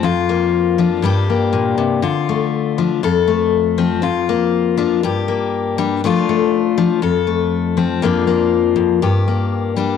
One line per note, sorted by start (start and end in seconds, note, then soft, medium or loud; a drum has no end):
0.03 1.02 F2 medium
0.03 1.04 F4 medium
0.29 1.01 A#3 medium
0.78 1.01 F3 medium
0.78 1.01 D4 medium
1.02 2.00 G2 medium
1.02 2.01 G3 medium
1.02 1.29 A#3 medium
1.02 2.01 D4 medium
1.02 2.02 G4 medium
1.30 2.01 A#3 soft
1.53 1.77 A#2 medium
1.78 2.02 C3 medium
2.02 3.00 D3 medium
2.02 3.03 F4 medium
2.29 3.01 A3 medium
2.78 3.00 F3 medium
2.78 3.01 D4 soft
3.03 4.01 F2 medium
3.03 4.01 A4 medium
3.28 4.00 A3 medium
3.78 4.00 F3 medium
3.78 4.03 C4 medium
4.02 5.02 F2 medium
4.02 5.02 F4 medium
4.29 5.00 A#3 medium
4.77 5.00 F3 medium
4.77 5.00 D4 medium
5.03 6.00 G2 medium
5.03 6.00 G4 medium
5.28 6.00 A#3 soft
5.78 6.00 G3 medium
5.78 6.00 D4 medium
6.04 6.76 F3 soft
6.04 6.28 A3 medium
6.04 6.77 D4 medium
6.04 7.03 F4 medium
6.04 muted steel-string acoustic guitar stroke medium
6.29 7.00 A3 medium
6.78 7.00 F3 medium
6.78 7.00 D4 soft
7.02 8.01 F2 medium
7.02 8.00 A4 medium
7.27 7.99 A3 soft
7.77 7.99 F3 medium
7.77 8.02 C4 medium
8.02 8.75 F2 medium
8.02 8.99 F3 medium
8.02 8.26 A#3 medium
8.02 9.00 D4 medium
8.02 9.02 F4 medium
8.27 8.99 A#3 medium
8.76 9.01 F2 medium
9.02 9.97 G2 medium
9.02 9.97 G4 medium
9.28 9.97 A#3 soft
9.76 9.97 G3 medium
9.76 9.97 D4 medium